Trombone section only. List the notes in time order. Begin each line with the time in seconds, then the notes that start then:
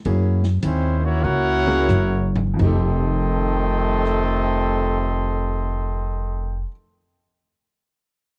0.63 C4
1.01 E3 A#3 C#4
1.22 A#3 C#4 F#4
2.60 F2 C3 D#3 A3